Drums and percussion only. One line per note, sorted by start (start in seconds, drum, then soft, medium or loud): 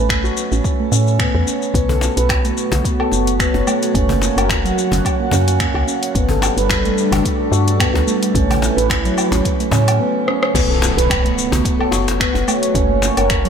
0.09 finger snap loud
0.09 kick loud
0.09 shaker soft
0.25 shaker soft
0.37 shaker medium
0.52 shaker soft
0.64 kick loud
0.64 shaker soft
0.92 shaker medium
1.07 shaker soft
1.19 finger snap medium
1.19 kick loud
1.19 shaker soft
1.47 shaker medium
1.62 shaker soft
1.74 kick loud
1.74 closed hi-hat soft
1.74 shaker soft
1.89 cajon bass medium
2.01 cajon slap medium
2.01 shaker medium
2.17 closed hi-hat soft
2.17 shaker soft
2.29 finger snap medium
2.29 kick loud
2.29 cajon slap medium
2.29 closed hi-hat soft
2.29 low woodblock medium
2.29 shaker soft
2.45 closed hi-hat soft
2.45 shaker soft
2.57 shaker medium
2.72 cajon bass medium
2.72 closed hi-hat soft
2.72 shaker soft
2.85 kick medium
2.85 closed hi-hat soft
2.85 shaker soft
3.00 low woodblock medium
3.12 cajon slap soft
3.12 shaker medium
3.27 closed hi-hat soft
3.27 shaker soft
3.40 finger snap medium
3.40 kick loud
3.40 closed hi-hat soft
3.40 shaker soft
3.54 cajon slap soft
3.67 low woodblock medium
3.67 shaker medium
3.83 closed hi-hat soft
3.83 shaker soft
3.95 kick loud
3.95 closed hi-hat soft
3.95 shaker soft
4.09 cajon bass medium
4.22 cajon slap medium
4.22 shaker medium
4.38 closed hi-hat soft
4.38 low woodblock medium
4.38 shaker soft
4.49 finger snap loud
4.49 kick medium
4.49 cajon slap medium
4.49 closed hi-hat medium
4.49 shaker soft
4.66 closed hi-hat soft
4.66 shaker soft
4.78 shaker medium
4.91 cajon bass medium
4.91 cajon slap soft
4.91 closed hi-hat soft
4.91 shaker soft
5.05 kick medium
5.05 closed hi-hat medium
5.05 low woodblock medium
5.05 shaker soft
5.31 cajon bass medium
5.31 shaker medium
5.48 closed hi-hat soft
5.48 shaker soft
5.60 finger snap medium
5.60 kick loud
5.60 closed hi-hat medium
5.60 shaker soft
5.75 low woodblock medium
5.88 shaker medium
6.03 closed hi-hat soft
6.03 shaker soft
6.15 kick loud
6.15 closed hi-hat medium
6.15 shaker soft
6.29 cajon bass medium
6.42 cajon slap medium
6.42 low woodblock medium
6.42 shaker medium
6.58 closed hi-hat soft
6.58 shaker soft
6.69 finger snap loud
6.69 kick loud
6.69 cajon slap medium
6.69 closed hi-hat medium
6.69 shaker soft
6.85 closed hi-hat soft
6.85 shaker soft
6.98 shaker medium
7.12 cajon bass medium
7.12 closed hi-hat soft
7.12 low woodblock medium
7.12 shaker soft
7.25 kick medium
7.25 closed hi-hat medium
7.25 shaker soft
7.53 cajon slap soft
7.53 shaker medium
7.68 closed hi-hat soft
7.68 shaker soft
7.80 finger snap loud
7.80 kick medium
7.80 closed hi-hat medium
7.80 low woodblock medium
7.80 shaker soft
7.95 cajon slap medium
8.08 shaker medium
8.23 closed hi-hat soft
8.23 shaker soft
8.35 kick loud
8.35 closed hi-hat medium
8.35 shaker soft
8.51 cajon bass medium
8.51 closed hi-hat soft
8.51 low woodblock medium
8.51 shaker soft
8.62 cajon slap medium
8.62 shaker medium
8.78 closed hi-hat soft
8.78 shaker soft
8.90 finger snap loud
8.90 kick medium
8.90 cajon slap medium
8.90 closed hi-hat medium
8.90 shaker soft
9.05 closed hi-hat soft
9.05 shaker soft
9.18 low woodblock medium
9.18 shaker medium
9.32 cajon bass medium
9.32 cajon slap soft
9.32 closed hi-hat soft
9.32 shaker soft
9.45 kick loud
9.45 closed hi-hat medium
9.45 shaker soft
9.60 closed hi-hat soft
9.60 shaker soft
9.72 cajon bass medium
9.72 shaker medium
9.88 closed hi-hat soft
9.88 low woodblock medium
9.88 shaker soft
10.28 cross-stick medium
10.43 cross-stick medium
10.55 kick loud
10.55 closed hi-hat medium
10.55 crash loud
10.55 shaker soft
10.82 cajon slap medium
10.82 shaker medium
10.98 closed hi-hat soft
10.98 shaker soft
11.10 finger snap loud
11.10 kick loud
11.10 closed hi-hat medium
11.10 low woodblock medium
11.10 shaker soft
11.26 closed hi-hat soft
11.38 shaker medium
11.52 cajon bass medium
11.52 cajon slap medium
11.52 closed hi-hat soft
11.52 shaker soft
11.65 kick loud
11.65 closed hi-hat medium
11.65 shaker soft
11.81 low woodblock medium
11.92 cajon slap medium
11.92 shaker medium
12.08 cajon slap medium
12.08 closed hi-hat soft
12.08 shaker soft
12.20 finger snap loud
12.20 kick loud
12.20 closed hi-hat medium
12.20 shaker soft
12.35 cajon slap medium
12.35 shaker soft
12.48 low woodblock medium
12.48 shaker medium
12.63 closed hi-hat soft
12.63 shaker soft
12.75 kick loud
12.75 closed hi-hat medium
12.75 shaker soft
13.02 cajon slap medium
13.02 shaker medium
13.17 closed hi-hat soft
13.17 low woodblock medium
13.17 shaker soft
13.30 finger snap loud
13.30 kick loud
13.30 closed hi-hat medium
13.30 shaker soft
13.45 closed hi-hat soft